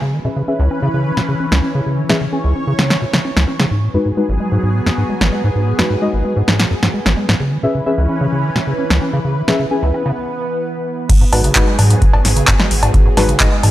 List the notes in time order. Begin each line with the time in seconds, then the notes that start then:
0.02 C#3 E3 C#4 B4
0.13 D#3
0.25 B2 C#4 G#4 B4 E5
0.36 C#3
0.48 C#4 G#4 B4 E5
0.59 C#2
0.71 C#4
0.82 C#3
0.94 C#3
1.06 D#3
1.17 B2, snare
1.29 C#3
1.40 C#4
1.52 C#2, snare
1.63 C#4
1.75 C#3
1.86 C#3 C#5
1.98 D#3
2.09 B2 C#4 G#4 B4 E5, snare
2.21 C#3
2.32 C#4 G#4 B4 G#5
2.44 C#2
2.56 C#4
2.67 C#3
2.79 C#3, snare
2.90 D#3, snare
3.02 B2
3.13 C#3, snare
3.25 C#4
3.36 C#2, snare
3.48 C#4
3.60 C#3, snare
3.71 G#2 F#3 B3 G#4
3.83 A2
3.94 F#2 G#3 D#4 F#4 B4
4.06 G#2
4.17 G#3 D#4 F#4 B4
4.29 G#1
4.40 G#3
4.52 G#2
4.63 G#2
4.75 A2
4.86 F#2, snare
4.98 G#2
5.09 G#3
5.21 G#1, snare
5.32 G#3
5.44 G#2
5.55 G#2
5.67 A2
5.79 F#2 G#3 D#4 F#4 B4, snare
5.90 G#2
6.02 G#3 D#4 F#4 D#5
6.13 G#1
6.25 G#3
6.36 G#2
6.48 G#2, snare
6.59 A2, snare
6.71 F#2
6.83 G#2, snare
6.94 G#3
7.06 G#1, snare
7.17 G#3
7.29 G#2, snare
7.40 C#3 E3 C#4 B4
7.52 D#3
7.63 B2 C#4 G#4 B4 E5
7.75 C#3
7.86 C#4 G#4 B4 E5
7.98 C#2
8.09 C#4
8.21 C#3
8.32 C#3
8.44 D#3
8.55 B2, snare
8.67 C#3
8.79 C#4
8.90 C#2, snare
9.02 C#4
9.13 C#3
9.25 C#3 B3
9.36 D#3
9.48 B2 C#4 G#4 B4 E5, snare
9.59 C#3
9.71 C#4 G#4 B4 G#5
9.83 C#2
9.94 C#4
10.06 C#3
11.09 G#2 F#3 B3 G#4, kick, closed hi-hat, crash
11.21 G#2
11.32 G#1 G#2 G#3 D#4 F#4 B4, open hi-hat, cowbell
11.44 C#3, closed hi-hat
11.56 G#2 G#3 D#4 F#4 B4, kick, clap, closed hi-hat
11.67 G#3
11.79 G#2 D#3, open hi-hat, cowbell
11.90 G#2, closed hi-hat
12.02 G#2, kick, closed hi-hat
12.13 G#1 G#2, cowbell
12.25 G#1 G#2, snare, open hi-hat
12.36 C#3, closed hi-hat
12.48 G#2, kick, clap, closed hi-hat, cowbell
12.59 G#3, snare
12.71 G#1 D#3, open hi-hat
12.83 G#2, closed hi-hat, cowbell
12.94 G#2, kick, closed hi-hat
13.06 G#2
13.17 G#1 G#2 G#3 D#4 F#4 B4, snare, open hi-hat, cowbell
13.29 C#3, closed hi-hat
13.40 G#2 G#3 D#4 F#4 D#5, kick, clap, closed hi-hat
13.52 G#3
13.63 G#2 D#3, open hi-hat, cowbell